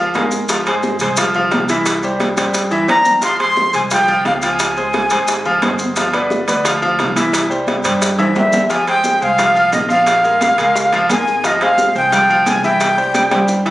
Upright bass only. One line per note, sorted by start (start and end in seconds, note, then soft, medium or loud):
0.00 0.11 F2 medium
0.14 0.94 G#2 medium
1.00 1.48 C2 medium
1.52 2.32 C2 medium
2.37 2.85 G2 medium
2.89 3.69 F2 medium
3.73 4.22 C2 medium
4.25 5.05 C#2 medium
5.11 5.59 G#1 medium
5.63 6.42 G1 medium
6.48 6.96 D2 medium
7.00 7.79 C2 medium
7.85 8.32 G2 medium
8.36 9.16 F2 medium
9.21 9.69 C2 medium
9.73 10.52 A#1 medium
10.58 11.06 C#2 medium
11.09 11.89 G#1 medium
11.95 12.43 C2 medium
12.46 13.26 C2 medium
13.32 13.70 G2 medium